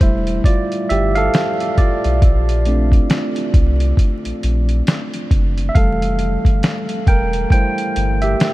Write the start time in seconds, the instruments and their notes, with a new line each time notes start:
0.01 sub bass E1, tine electric piano G3 A3 E4 C5 E5, kick, closed hi-hat
0.27 closed hi-hat
0.44 tine electric piano F4 D5, kick, closed hi-hat
0.72 closed hi-hat
0.89 sub bass G1, tine electric piano G4 E5, closed hi-hat
1.15 tine electric piano A4 F5, closed hi-hat
1.34 snare, closed hi-hat
1.60 closed hi-hat
1.78 tine electric piano F4 D5, kick, closed hi-hat
2.04 sub bass B1, closed hi-hat
2.22 sub bass A#1, kick, closed hi-hat
2.49 closed hi-hat
2.65 tine electric piano A3 C4 D4, closed hi-hat
2.92 kick, closed hi-hat
3.10 snare, closed hi-hat
3.36 closed hi-hat
3.54 sub bass C2, kick, closed hi-hat
3.80 closed hi-hat
3.97 kick, closed hi-hat
4.25 sub bass A#1, closed hi-hat
4.43 sub bass A#1, closed hi-hat
4.69 closed hi-hat
4.87 snare, closed hi-hat
5.14 closed hi-hat
5.31 sub bass F#1, kick, closed hi-hat
5.58 closed hi-hat
5.69 tine electric piano E5
5.75 sub bass F1, tine electric piano E3 G3 A3 A4 F5, kick, closed hi-hat
6.02 closed hi-hat
6.19 closed hi-hat
6.45 sub bass G1, kick, closed hi-hat
6.63 snare, closed hi-hat
6.89 closed hi-hat
7.07 sub bass E1, tine electric piano A#4 G5, kick, closed hi-hat
7.33 closed hi-hat
7.50 tine electric piano G3 A3 E4 C5 G5, kick, closed hi-hat
7.78 closed hi-hat
7.96 sub bass G1, closed hi-hat
8.22 tine electric piano G4 E5, closed hi-hat
8.40 snare, closed hi-hat